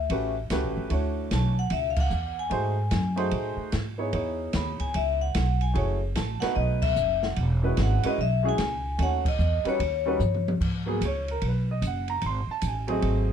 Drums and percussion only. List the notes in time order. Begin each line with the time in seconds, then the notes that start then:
0.10 kick, ride
0.50 kick, snare, hi-hat pedal, ride
0.90 kick, ride
1.31 kick, snare, hi-hat pedal, ride
1.70 kick, ride
1.96 kick, crash
2.11 hi-hat pedal
2.51 kick, ride
2.91 kick, snare, hi-hat pedal, ride
3.17 ride
3.31 kick, ride
3.72 kick, snare, hi-hat pedal, ride
4.13 kick, ride
4.53 kick, snare, hi-hat pedal, ride
4.80 kick, ride
4.94 ride
5.35 snare, hi-hat pedal, ride
5.61 ride
5.75 kick, ride
6.15 kick, snare, hi-hat pedal, ride
6.42 snare, ride
6.56 kick
6.82 kick, crash
6.96 hi-hat pedal
7.23 snare
7.36 kick, ride
7.77 kick, snare, hi-hat pedal, ride
8.03 ride
8.18 kick
8.58 kick, snare, hi-hat pedal, ride
8.99 kick, ride
9.25 kick, crash
9.39 hi-hat pedal
9.65 ride
9.80 kick, ride
10.20 hi-hat pedal, mid tom
10.35 mid tom
10.48 mid tom
10.61 kick, crash
11.01 kick, hi-hat pedal, ride
11.28 ride
11.42 kick, ride
11.82 kick, hi-hat pedal, ride
12.08 ride
12.22 kick, ride
12.62 kick, hi-hat pedal, ride
12.88 ride
13.02 kick, ride